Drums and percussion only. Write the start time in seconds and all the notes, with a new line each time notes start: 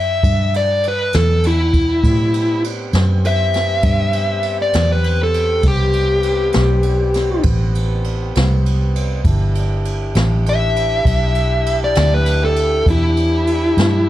0.23 kick, ride
0.54 ride
0.83 ride
1.13 snare, ride
1.43 ride
1.74 kick, ride
2.04 kick, ride
2.34 ride
2.64 ride
2.93 snare, ride
3.25 ride
3.54 snare, ride
3.83 kick, ride
4.13 ride
4.43 ride
4.73 snare, ride
5.04 ride
5.34 ride
5.63 kick, ride
5.93 ride
6.23 ride
6.53 snare, ride
6.83 ride
7.14 snare, ride
7.43 kick, ride
7.75 ride
8.04 ride
8.35 snare, ride
8.66 ride
8.96 ride
9.24 kick, ride
9.55 ride
9.85 ride
10.15 snare, ride
10.46 ride
10.76 ride
11.05 kick, ride
11.35 ride
11.66 ride
11.95 snare, ride
12.26 ride
12.56 ride
12.86 kick, ride
13.17 ride
13.47 ride
13.78 snare, ride